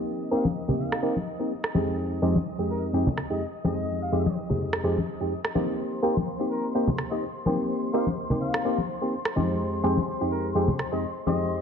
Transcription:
Already playing: A#3 C4 D#4 G4 D#5 D#6
0.08 shaker
0.31 A#3 C4 D#4 G4 F5, shaker
0.44 high conga, shaker
0.56 shaker
0.68 A#3 C4 D#4 G4, low conga
0.79 F5, shaker
0.92 cross-stick
1.03 A#3 C4 D#4 G4, shaker
1.16 high conga
1.27 shaker
1.39 A#3 C4 D#4 G4, shaker
1.51 shaker
1.64 cross-stick
1.74 F2 G#3 C4 D#4 G4, high conga, shaker
1.88 shaker
1.98 shaker
2.22 F2 G#3 C4 D#4 G4, shaker
2.35 high conga, shaker
2.46 shaker
2.58 F2 G#3 C4 D#4 G4
2.70 A#4, shaker
2.83 shaker
2.93 F2 G#3 C4 D#4 G4, shaker
3.07 high conga, low conga
3.17 cross-stick, shaker
3.30 F2 G#3 C4 D#4 G4 D#5, shaker
3.41 shaker
3.64 F2 G#3 C4 D#4 G4 D#5, high conga, shaker
3.78 shaker
3.89 shaker
4.02 F5
4.12 F2 G#3 C4 D#4 G4, shaker
4.25 high conga, shaker
4.36 shaker
4.49 F2 G#3 C4 D#4 G4, low conga
4.61 shaker
4.73 cross-stick, shaker
4.83 F2 G#3 C4 D#4 G4, shaker
4.98 high conga
5.08 shaker
5.20 F2 G#3 C4 D#4 G4, shaker
5.32 shaker
5.45 cross-stick
5.55 A#3 C4 D#4 G4, high conga, shaker
5.68 shaker
5.79 C5 C6
6.03 A#3 C4 D#4 G4, shaker
6.16 high conga, shaker
6.27 shaker
6.40 A#3 C4 D#4 G4
6.51 A#4, shaker
6.64 shaker
6.74 A#3 C4 D#4 G4, shaker
6.87 high conga, low conga
6.98 cross-stick, shaker
7.11 A#3 C4 D#4 G4 D#5, shaker
7.23 shaker
7.46 A#3 C4 D#4 G4, high conga, shaker
7.59 shaker
7.69 shaker
7.93 A#3 C4 D#4 G4 F5, shaker
8.06 high conga, shaker
8.17 shaker
8.30 A#3 C4 D#4 G4, low conga
8.41 F5, shaker
8.54 cross-stick, shaker
8.65 A#3 C4 D#4 G4, shaker
8.78 high conga
8.89 shaker
9.01 A#3 C4 D#4 G4, shaker
9.13 shaker
9.25 cross-stick
9.36 F2 G#3 C4 D#4 G4, high conga, shaker
9.49 shaker
9.83 F2 G#3 C4 D#4 G4, shaker
9.96 high conga, shaker
10.07 shaker
10.20 F2 G#3 C4 D#4 G4
10.31 A#4, shaker
10.44 shaker
10.55 F2 G#3 C4 D#4 G4, shaker
10.68 high conga, low conga
10.78 cross-stick, shaker
10.92 F2 G#3 C4 D#4 G4 D#5, shaker
11.03 shaker
11.26 F2 G#3 C4 D#4 G4 D#5, high conga, shaker
11.40 shaker
11.50 shaker

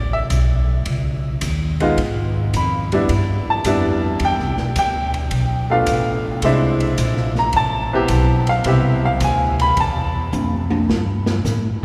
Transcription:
Already playing: A1 D5
0.13 E5
0.30 B1, kick, hi-hat pedal, ride
0.86 C#2, kick, ride
1.41 D#2, kick, hi-hat pedal, ride
1.80 G#3 B3 D#4 F4, ride
1.98 G#2, kick, ride
2.54 F2 B5, kick, hi-hat pedal, ride
2.92 G3 B3 D4 E4, ride
3.09 G2, kick, ride
3.50 A5
3.64 F2 G3 B3 D4 E4, kick, hi-hat pedal, ride
4.20 E2, kick, ride
4.25 G5
4.39 C2, snare
4.57 B1, snare
4.76 D2 G5, kick, hi-hat pedal, ride
5.14 ride
5.31 B1, kick, ride
5.70 A3 B3 D4 F4 F5
5.86 A1, kick, hi-hat pedal, ride
6.42 C2 G#3 C4 D4 E4 E5, kick, ride
6.80 ride
6.98 A#1, kick, hi-hat pedal, ride
7.17 snare
7.35 A#5, snare
7.53 A1 A5, kick, ride
7.93 B3 C4 E4 G4
8.08 B1, kick, hi-hat pedal, ride
8.47 F5, ride
8.64 C2 B3 C4 E4 G4, kick, ride
8.69 E5
9.05 F5
9.20 D2 G#5, kick, hi-hat pedal, ride
9.59 B5, ride
9.77 E2 A5, kick, ride
10.32 F2, hi-hat pedal, high tom
10.70 high tom
10.89 G2, snare
11.26 snare
11.45 A2, snare, hi-hat pedal

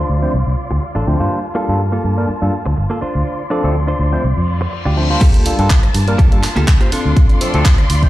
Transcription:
Already playing: D4 F4 D5 C6
0.00 F4 C5
0.09 D2
0.22 F3 A3 C4 D4 C5
0.34 C2
0.47 C2
0.71 D2, muted clean electric guitar stroke
0.82 muted clean electric guitar stroke
0.95 A1 D4 F4 A4
1.07 D2 F3 A3 C4 D4 C5
1.19 G2 G3 A#3 D4 F4 C5, muted clean electric guitar stroke
1.31 A#3 A5
1.55 G3 A#3 D4 F4 A4
1.68 G2 G3 A#3 D4 F4 A4
1.92 A#3 F4 A4
2.04 G2
2.17 G3 A#3 D4 F4 A#4
2.29 muted fingered electric bass stroke
2.41 G2 G3 A#3 D4 F4 A4
2.66 D2, muted clean electric guitar stroke
2.77 G1, muted clean electric guitar stroke
2.90 A#3 F4 A4
3.01 D4 F4 C5 D5 C6, muted fingered electric bass stroke
3.15 D2
3.50 F3 A3 C4 D4 F4 A4 D5
3.63 D2 F3 A3 C4 D4 A4
3.87 D4 F4 C5
3.99 D2
4.12 F3 A3 C4 D4 C5
4.24 C2, reverse cymbal
4.37 F2
4.61 muted clean electric guitar stroke
4.72 muted clean electric guitar stroke
4.85 D2 D4 F4 G4
4.96 F3 A3 C4 D4 C5
5.10 G3 A#3 D4 F4 C5, muted clean electric guitar stroke
5.21 A#3 F4 G4 A4 A5, kick, closed hi-hat, crash, sub drop
5.34 closed hi-hat
5.46 G3 A#3 D4 F4 A4, open hi-hat
5.59 G2 G3 A#3 D4 F4 A4, closed hi-hat
5.70 kick, clap, closed hi-hat
5.83 muted clean electric guitar stroke, cross-stick, closed hi-hat
5.94 G2, open hi-hat
6.08 G3 A#3 D4 F4 A#4, closed hi-hat
6.18 A#3 F4 G4 A4, kick, closed hi-hat
6.32 G2 G3 A#3 D4 F4 A4, closed hi-hat
6.43 clap, open hi-hat
6.56 D2 A#3 F4 G4 A4, closed hi-hat
6.68 kick, clap, closed hi-hat
6.80 A#3 F4 G4 C5, closed hi-hat
6.92 C4 D4 F4 A4 D5 C6, muted fingered electric bass stroke, open hi-hat
7.05 D2
7.17 kick, closed hi-hat
7.29 closed hi-hat
7.41 F3 A3 C4 D4 A4, open hi-hat
7.54 D2 F3 A3 C4 D4 A4, closed hi-hat
7.65 kick, clap, closed hi-hat
7.78 muted clean electric guitar stroke, cross-stick, closed hi-hat
7.90 D2, open hi-hat
8.03 F3 A3 C4 D4 C5, kick, closed hi-hat

